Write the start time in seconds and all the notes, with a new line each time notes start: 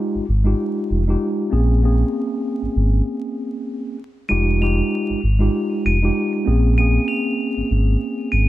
Already playing: G#3 D#4 F4 G4
0.15 G#1
0.29 G#1
0.44 G#3 D#4 F4 G4
0.91 F1
1.08 G#3 D#4 F4 G4
1.50 A#1 A#3 C4 C#4 G#4
1.83 A#3 C4 C#4 G#4
2.63 G#1
2.76 G#1
4.29 F1 G#3 D#4 F4 G4 D#7
4.61 G#3 D#4 F4 G4 F7
5.10 G#1
5.24 G#1
5.39 G#3 D#4 F4 G4
5.86 F1 D#7
6.02 G#3 D#4 F4 G4
6.45 A#1 A#3 C4 C#4 G#4
6.78 A#3 C4 C#4 G#4 D#7
7.08 F7
7.57 G#1
7.71 G#1
8.32 G#1 D#7